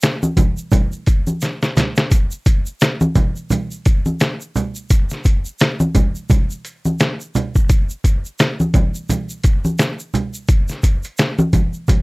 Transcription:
0.02 snare, closed hi-hat, shaker
0.23 high conga, shaker
0.37 kick, closed hi-hat, high conga, low conga, shaker
0.57 shaker
0.72 kick, closed hi-hat, high conga, low conga, shaker
0.92 shaker
1.06 kick, closed hi-hat, shaker
1.27 high conga, shaker
1.41 snare, closed hi-hat, shaker
1.62 snare, shaker
1.77 snare, closed hi-hat, low conga, shaker
1.96 snare, shaker
2.11 kick, closed hi-hat, shaker
2.31 shaker
2.46 kick, closed hi-hat, shaker
2.66 shaker
2.80 snare, closed hi-hat, shaker
3.01 high conga, shaker
3.15 kick, closed hi-hat, high conga, low conga, shaker
3.36 shaker
3.50 closed hi-hat, high conga, low conga, shaker
3.71 shaker
3.85 kick, closed hi-hat, shaker
4.06 high conga, shaker
4.20 snare, closed hi-hat, shaker
4.41 shaker
4.56 closed hi-hat, low conga, shaker
4.75 shaker
4.90 kick, closed hi-hat, shaker
5.10 snare, shaker
5.24 kick, closed hi-hat, shaker
5.45 shaker
5.59 snare, closed hi-hat, shaker
5.80 high conga, shaker
5.95 kick, closed hi-hat, high conga, low conga, shaker
6.15 shaker
6.30 kick, closed hi-hat, high conga, low conga, shaker
6.50 shaker
6.65 closed hi-hat, shaker
6.85 high conga, shaker
7.00 snare, closed hi-hat, shaker
7.20 shaker
7.35 closed hi-hat, low conga, shaker
7.55 kick, shaker
7.70 kick, closed hi-hat, shaker
7.90 shaker
8.04 kick, closed hi-hat, shaker
8.25 shaker
8.39 snare, closed hi-hat, shaker
8.60 high conga, shaker
8.74 kick, closed hi-hat, high conga, low conga, shaker
8.95 shaker
9.09 closed hi-hat, high conga, low conga, shaker
9.29 shaker
9.44 kick, closed hi-hat, shaker
9.65 high conga, shaker
9.79 snare, closed hi-hat, shaker
9.99 shaker
10.14 closed hi-hat, low conga, shaker
10.34 shaker
10.48 kick, closed hi-hat, shaker
10.68 snare, shaker
10.83 kick, closed hi-hat, shaker
11.03 closed hi-hat, shaker
11.18 snare, closed hi-hat, shaker
11.39 high conga, shaker
11.53 kick, closed hi-hat, high conga, low conga, shaker
11.73 shaker
11.88 kick, closed hi-hat, high conga, low conga, shaker

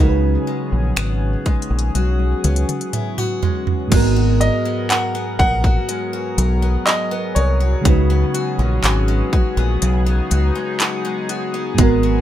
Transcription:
Already playing: C#3 F#3 G#3 B3 F#4 G#5
0.00 C#2 C#3 C#4 D#4 F#4 G#4 A#4
0.09 B4
0.47 G#3
0.72 A#1
0.96 G#1 B3, finger snap, closed hi-hat
1.46 G#3, kick, closed hi-hat
1.62 closed hi-hat
1.70 A#1
1.79 closed hi-hat
1.95 B1 F#4, closed hi-hat, high tom
2.19 high tom
2.44 C#2 B3, closed hi-hat, mid tom
2.56 closed hi-hat
2.69 closed hi-hat, mid tom
2.81 closed hi-hat
2.93 E4, closed hi-hat, mid tom
3.18 F#4, mid tom
3.43 G#3, floor tom
3.67 floor tom
3.88 G#2 G#3, closed hi-hat, crash
3.92 G#1 F#3 G#3 B3 F#4 G#4 A#4, kick
3.96 A#4
4.16 F#4
4.41 A#4 D#5, closed hi-hat
4.65 B3
4.90 A#4 F#5, clap, closed hi-hat
5.15 B3
5.39 A#1 A#4 F#5, kick
5.64 F#4, kick
5.89 G#3, closed hi-hat
6.13 F#4
6.38 B1 A#4, closed hi-hat
6.62 B3
6.86 A#4 D#5, clap, closed hi-hat
7.11 B3
7.35 C2 A#4 C#5, closed hi-hat
7.60 F#4
7.81 C#3 G#3 C#4
7.85 C#2 C#3 D#4 F#4, kick, closed hi-hat
7.89 B4
8.10 B3
8.34 F#4, closed hi-hat
8.59 A#1 G#3
8.83 G#1 F#4, clap, closed hi-hat
9.08 G#3
9.33 F#4, kick
9.57 A#1 B3
9.82 B1 C#3 D#4, closed hi-hat
10.06 B3
10.31 C#2 F#4, closed hi-hat
10.55 G#3
10.80 F#4, clap, closed hi-hat
11.05 G#3
11.29 F#4, closed hi-hat
11.54 B3
11.74 G#2 G#3, closed hi-hat
11.79 G#1 F#3 B3 F#4 A#4, kick
11.83 A#4
12.03 F#4

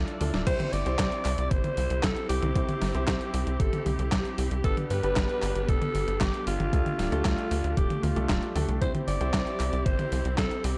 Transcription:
Already playing: D4 E4 F4 A4 D5 A5 E6
0.08 closed hi-hat
0.21 D2 D4 E4 F4 A4, open hi-hat, high tom
0.34 D1, snare, closed hi-hat
0.47 C2 C4 E4 G4 C5, kick, closed hi-hat, crash
0.60 closed hi-hat, high tom
0.73 G1 D5, open hi-hat
0.86 C2 C4 E4 G4 C5, closed hi-hat
0.99 C2, kick, snare, clap, closed hi-hat
1.12 closed hi-hat
1.25 C2, clap, open hi-hat
1.38 C2, closed hi-hat
1.51 G1 C5, kick, closed hi-hat
1.64 closed hi-hat, high tom
1.77 C2, open hi-hat
1.90 C2, closed hi-hat
2.03 C2 A4, kick, snare, clap, closed hi-hat
2.16 closed hi-hat
2.29 C2 G4, open hi-hat
2.42 C2, closed hi-hat, high tom
2.56 C2 C4 E4 G4 C5, kick, closed hi-hat
2.69 closed hi-hat, high tom
2.82 G1, snare, open hi-hat
2.95 C2 C4 E4 G4 C5, closed hi-hat
3.08 C2 G4, kick, snare, clap, closed hi-hat
3.21 closed hi-hat
3.34 C2, open hi-hat
3.47 C2, closed hi-hat
3.60 G1 A4, kick, closed hi-hat
3.73 closed hi-hat, high tom
3.86 C2 G4, open hi-hat, high tom
3.99 C2, closed hi-hat
4.12 C2, kick, snare, clap, closed hi-hat
4.25 closed hi-hat
4.38 C2, open hi-hat
4.51 C2, closed hi-hat
4.64 G1 B3 D4 G4 A4 B4, kick, closed hi-hat
4.77 closed hi-hat, high tom
4.90 G2 B4, open hi-hat
5.03 G1 B3 D4 G4 B4, closed hi-hat
5.16 G1, kick, snare, clap, closed hi-hat
5.29 closed hi-hat
5.43 G1, clap, open hi-hat
5.56 G1, closed hi-hat
5.69 F1 A4, kick, closed hi-hat
5.82 closed hi-hat, high tom
5.95 G1, open hi-hat
6.08 G1, closed hi-hat
6.21 G1 G4, kick, snare, clap, closed hi-hat
6.34 closed hi-hat
6.47 G1 F4, open hi-hat
6.60 G1, closed hi-hat, high tom
6.73 D2 A3 D4 G4 A4, kick, closed hi-hat
6.86 closed hi-hat, high tom
6.99 D1, snare, open hi-hat
7.12 D2 A3 D4 G4 A4, closed hi-hat
7.25 D2 F4, kick, snare, clap, closed hi-hat
7.38 closed hi-hat
7.51 D2, open hi-hat
7.64 D2, closed hi-hat
7.77 D1 G4, kick, closed hi-hat
7.90 closed hi-hat, high tom
8.03 D2 F4, open hi-hat, high tom
8.16 C2 A3 D4 G4 A4, closed hi-hat
8.29 D1, kick, snare, clap, closed hi-hat
8.43 closed hi-hat
8.55 D2 A3 D4 G4 A4, open hi-hat, high tom
8.69 C2, closed hi-hat
8.81 C2 C4 E4 G4 C5, kick, closed hi-hat
8.95 closed hi-hat, high tom
9.08 G1 D5, open hi-hat
9.21 C2 C4 E4 G4 C5, closed hi-hat
9.34 C2, kick, snare, clap, closed hi-hat
9.47 closed hi-hat
9.60 C2, clap, open hi-hat
9.73 C2, closed hi-hat
9.86 G1 C5, kick, closed hi-hat
9.99 closed hi-hat, high tom
10.12 C2, open hi-hat
10.25 C2, closed hi-hat
10.38 C2 A4, kick, snare, clap, closed hi-hat
10.51 closed hi-hat
10.64 C2 G4, open hi-hat

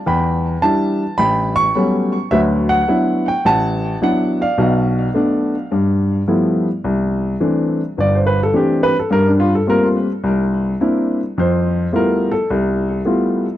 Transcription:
0.06 E2 G5 B5
0.62 G3 D4 E4 A5
1.18 A1 G5 B5
1.56 C#6
1.75 F#3 G3 A3 B3 C#4
2.31 D2 F#3 B4 E5
2.69 F#5
2.88 F#3 B3 D4 E4
3.28 G5
3.45 A1 F#5 A5
4.02 F#3 B3 D4 E4 F#5
4.41 D5 F5
4.58 B1 B2
5.14 A3 B3 D4
5.72 G2
6.28 F3 G3 A3 B3 E4
6.84 C2
7.40 E3 A3 C4 D4
7.98 G1 D5
8.15 C5
8.27 B4
8.43 A4
8.53 E3 A3 C4 D4 G4
8.83 B4
8.99 A4
9.10 G2 A#4
9.28 D4
9.40 F4
9.55 A4
9.67 G3 A3 A#3 C4 F4 A#4
9.84 F4
10.24 C2
10.81 A#3 C4 D4 E4
11.38 F2 C5
11.92 G3 A3 B3 E4 F4 A#4
12.32 A4
12.50 C2
13.05 G3 A3 B3 E4 F4

